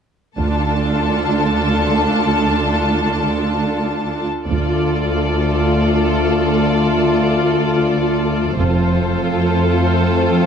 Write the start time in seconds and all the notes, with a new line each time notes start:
0.38 D2 D4 F4 A4 A5
4.47 D2 A3 F4 A4 D5
8.56 F1 F2 A3 C4 F4 A4 C5